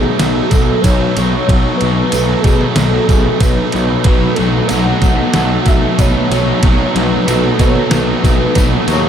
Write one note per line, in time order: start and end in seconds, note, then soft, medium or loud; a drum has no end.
0.00 0.42 B2 medium
0.00 0.87 A3 medium
0.00 0.35 B3 medium
0.00 1.48 F#4 medium
0.00 0.18 G#4 medium
0.00 snare soft
0.04 0.39 F#3 medium
0.04 0.39 A3 medium
0.04 0.37 D#4 medium
0.17 0.41 B1 medium
0.17 0.51 F#4 medium
0.17 0.83 A4 medium
0.17 snare loud
0.17 ride loud
0.17 tambourine medium
0.36 0.54 F#3 medium
0.36 0.55 A3 medium
0.36 0.68 B3 medium
0.36 0.54 D#4 medium
0.49 0.72 B1 medium
0.49 0.83 A4 medium
0.49 kick medium
0.49 ride medium
0.49 tambourine medium
0.54 0.85 B2 medium
0.54 0.70 F#3 medium
0.54 0.70 A3 medium
0.54 0.68 D#4 medium
0.69 0.86 F#3 medium
0.69 0.86 A3 medium
0.69 0.88 B3 medium
0.69 0.86 D#4 medium
0.81 1.05 B1 medium
0.81 1.18 B2 medium
0.81 1.16 B4 medium
0.81 1.46 C#5 loud
0.81 kick medium
0.81 ride loud
0.81 tambourine medium
0.86 1.18 F#3 medium
0.86 1.19 A3 medium
0.86 1.19 B3 medium
0.86 1.19 D#4 medium
1.16 1.37 B1 medium
1.16 1.50 B2 medium
1.16 1.37 F#3 medium
1.16 1.35 A3 medium
1.16 1.32 B3 medium
1.16 1.34 D#4 medium
1.16 1.48 C#5 medium
1.16 ride medium
1.16 tambourine medium
1.32 1.52 A3 medium
1.32 1.52 B3 medium
1.32 1.51 D#4 medium
1.37 1.51 F#3 medium
1.46 1.69 B1 medium
1.46 4.05 F#4 medium
1.46 1.77 C#5 loud
1.46 kick loud
1.46 ride loud
1.51 1.83 B2 medium
1.51 1.83 F#3 medium
1.51 1.84 A3 loud
1.51 1.83 B3 loud
1.51 1.83 D#4 loud
1.77 2.42 B4 loud
1.77 ride medium
1.82 2.02 B1 medium
1.82 2.14 B2 medium
1.82 2.15 F#3 medium
1.82 2.16 A3 medium
1.82 1.97 B3 medium
1.82 2.16 D#4 medium
1.82 tambourine soft
1.97 2.14 F#3 medium
1.97 2.16 B3 medium
2.12 2.34 B1 medium
2.12 2.45 B2 medium
2.12 2.32 F#3 medium
2.12 2.77 A3 medium
2.12 ride loud
2.12 tambourine loud
2.17 2.31 A3 loud
2.17 2.28 B3 loud
2.17 2.29 D#4 medium
2.28 2.47 A3 medium
2.28 2.47 B3 medium
2.28 2.46 D#4 medium
2.33 2.46 F#3 medium
2.41 2.65 B2 medium
2.41 2.76 G#4 medium
2.41 kick medium
2.41 ride medium
2.46 2.97 B2 medium
2.46 2.64 F#3 medium
2.46 2.63 A3 medium
2.46 2.61 B3 medium
2.46 2.61 D#4 medium
2.46 tambourine medium
2.61 2.95 F#3 medium
2.61 2.94 A3 medium
2.61 2.92 B3 medium
2.61 2.92 D#4 medium
2.61 snare soft
2.74 2.98 B1 medium
2.74 3.44 A3 medium
2.74 3.08 A4 medium
2.74 snare loud
2.74 ride loud
2.74 tambourine medium
2.93 3.10 F#3 medium
2.93 3.11 A3 medium
2.93 3.25 B3 medium
2.93 3.11 D#4 medium
3.06 3.30 B1 medium
3.06 3.41 B2 medium
3.06 3.41 G#4 loud
3.06 kick medium
3.06 ride medium
3.10 3.27 F#3 medium
3.10 3.26 A3 medium
3.10 3.24 D#4 medium
3.10 tambourine medium
3.25 3.42 F#3 medium
3.25 3.42 A3 medium
3.25 3.44 B3 medium
3.25 3.41 D#4 medium
3.39 3.61 B1 medium
3.39 3.73 B2 medium
3.39 3.74 F#3 medium
3.39 3.74 A3 medium
3.39 3.74 D#4 medium
3.39 4.01 B4 loud
3.39 3.73 B4 medium
3.39 kick medium
3.39 ride medium
3.39 tambourine loud
3.45 3.76 B3 medium
3.72 3.95 B1 medium
3.72 4.05 B2 medium
3.72 3.92 F#3 medium
3.72 3.90 A3 medium
3.72 3.89 B3 medium
3.72 3.88 D#4 medium
3.72 4.05 C#5 medium
3.72 ride medium
3.72 tambourine medium
3.89 4.06 F#3 soft
3.89 4.07 A3 medium
3.89 4.07 B3 medium
3.89 4.06 D#4 medium
4.02 4.26 B1 medium
4.02 4.38 B2 loud
4.02 6.63 F#4 medium
4.02 4.36 B4 loud
4.02 kick loud
4.02 ride medium
4.07 4.38 F#3 medium
4.07 4.39 A3 loud
4.07 4.40 B3 loud
4.07 4.40 D#4 loud
4.07 4.40 F#4 medium
4.35 4.69 B2 medium
4.35 4.69 A4 loud
4.35 ride medium
4.39 4.60 B1 medium
4.39 4.70 F#3 medium
4.39 4.71 A3 medium
4.39 4.53 B3 medium
4.39 4.71 D#4 medium
4.39 4.72 F#4 loud
4.39 tambourine soft
4.53 4.71 F#3 medium
4.53 4.73 B3 medium
4.68 4.92 B1 medium
4.68 5.01 B2 medium
4.68 4.87 F#3 loud
4.68 4.86 A3 medium
4.68 5.35 A4 medium
4.68 5.33 F#5 loud
4.68 ride medium
4.68 tambourine loud
4.72 4.85 B3 medium
4.72 4.85 D#4 medium
4.72 5.05 F#4 loud
4.86 5.02 F#3 medium
4.86 5.02 A3 medium
4.86 5.04 B3 medium
4.86 5.02 D#4 medium
5.02 5.23 B1 medium
5.02 5.50 B2 medium
5.02 5.19 F#3 medium
5.02 5.18 A3 medium
5.02 5.17 B3 medium
5.02 5.16 D#4 medium
5.02 kick medium
5.02 ride medium
5.02 tambourine medium
5.06 5.37 F#4 medium
5.17 5.50 F#3 medium
5.17 5.49 A3 medium
5.17 5.49 B3 medium
5.17 5.48 D#4 medium
5.33 5.57 B1 medium
5.33 5.67 B2 medium
5.33 5.67 F#3 medium
5.33 5.68 A3 medium
5.33 5.69 D#4 medium
5.33 5.99 A4 medium
5.33 5.69 F#5 loud
5.33 snare loud
5.33 ride medium
5.33 tambourine medium
5.38 5.69 F#4 medium
5.49 5.64 F#3 medium
5.49 5.65 A3 medium
5.49 5.80 B3 medium
5.49 5.65 D#4 medium
5.65 5.88 B1 medium
5.65 5.96 B2 medium
5.65 5.82 F#3 medium
5.65 5.81 A3 medium
5.65 5.80 D#4 medium
5.65 6.01 E5 loud
5.65 kick medium
5.65 ride medium
5.65 tambourine medium
5.70 6.00 F#4 loud
5.81 5.97 F#3 medium
5.81 5.98 A3 medium
5.81 6.00 B3 medium
5.81 5.98 D#4 medium
5.97 6.20 B1 medium
5.97 6.30 B2 medium
5.97 6.30 F#3 medium
5.97 6.32 A3 medium
5.97 6.32 B3 loud
5.97 6.32 D#4 medium
5.97 6.32 F#4 medium
5.97 6.32 B4 medium
5.97 6.63 C#5 loud
5.97 kick medium
5.97 ride medium
5.97 tambourine medium
6.31 6.52 B1 medium
6.31 6.62 B2 medium
6.31 6.47 F#3 medium
6.31 6.47 A3 medium
6.31 6.45 B3 medium
6.31 6.45 D#4 medium
6.31 6.64 F#4 medium
6.31 6.64 C#5 medium
6.31 ride medium
6.31 tambourine medium
6.46 6.63 F#3 medium
6.46 6.64 A3 medium
6.46 6.64 B3 medium
6.46 6.64 D#4 medium
6.63 6.84 B1 medium
6.63 6.94 B2 medium
6.63 6.95 F#3 medium
6.63 6.96 A3 loud
6.63 6.96 B3 loud
6.63 6.96 D#4 loud
6.63 7.28 F#4 medium
6.63 6.96 F#4 loud
6.63 6.96 C#5 loud
6.63 kick loud
6.63 ride loud
6.63 tambourine soft
6.95 7.17 B1 medium
6.95 7.25 B2 medium
6.95 7.26 F#3 medium
6.95 7.27 A3 medium
6.95 7.10 B3 medium
6.95 7.27 D#4 medium
6.95 7.27 F#4 medium
6.95 7.61 B4 loud
6.95 ride medium
6.95 tambourine soft
7.11 7.27 F#3 medium
7.11 7.29 B3 medium
7.26 7.49 B1 medium
7.26 7.59 B2 medium
7.26 7.43 F#3 medium
7.26 7.43 A3 medium
7.26 7.42 B3 medium
7.26 7.42 D#4 loud
7.26 7.60 F#4 loud
7.26 7.91 A4 medium
7.26 ride medium
7.26 tambourine loud
7.43 7.60 F#3 medium
7.43 7.60 A3 medium
7.43 7.61 B3 medium
7.43 7.61 D#4 medium
7.59 7.81 B2 medium
7.59 8.08 B2 medium
7.59 7.77 F#3 medium
7.59 7.76 A3 medium
7.59 7.74 B3 medium
7.59 7.75 D#4 medium
7.59 7.92 F#4 medium
7.59 7.91 C#5 medium
7.59 kick medium
7.59 ride medium
7.59 tambourine medium
7.75 8.09 F#3 medium
7.75 8.08 A3 medium
7.75 8.06 B3 medium
7.75 8.08 D#4 medium
7.75 snare soft
7.90 8.13 B1 medium
7.90 8.22 B2 medium
7.90 8.22 F#3 medium
7.90 8.23 A3 medium
7.90 8.24 D#4 medium
7.90 8.24 F#4 medium
7.90 8.56 A4 medium
7.90 8.23 B4 medium
7.90 snare loud
7.90 ride loud
7.90 tambourine medium
8.07 8.22 F#3 medium
8.07 8.23 A3 medium
8.07 8.38 B3 medium
8.07 8.24 D#4 medium
8.23 8.45 B1 medium
8.23 8.53 B2 medium
8.23 8.40 F#3 medium
8.23 8.39 A3 medium
8.23 8.38 D#4 medium
8.23 8.56 F#4 loud
8.23 8.93 B4 medium
8.23 kick medium
8.23 ride medium
8.23 tambourine medium
8.39 8.54 F#3 medium
8.39 8.55 A3 medium
8.39 8.56 B3 medium
8.39 8.55 D#4 medium
8.54 8.77 B1 medium
8.54 8.86 B2 medium
8.54 8.86 F#3 medium
8.54 8.88 A3 medium
8.54 8.89 B3 medium
8.54 8.88 D#4 medium
8.54 8.89 F#4 medium
8.54 8.88 B4 medium
8.54 kick medium
8.54 ride medium
8.54 tambourine medium
8.88 9.09 D#2 medium
8.88 9.09 B2 medium
8.88 9.04 F#3 medium
8.88 9.03 A3 medium
8.88 9.01 B3 medium
8.88 9.02 D#4 medium
8.88 9.09 F#4 medium
8.88 9.09 C#5 medium
8.88 ride medium
8.88 tambourine medium
8.92 9.09 C#5 medium
9.02 9.09 F#3 medium
9.02 9.09 A3 medium
9.02 9.09 B3 medium
9.02 9.09 D#4 medium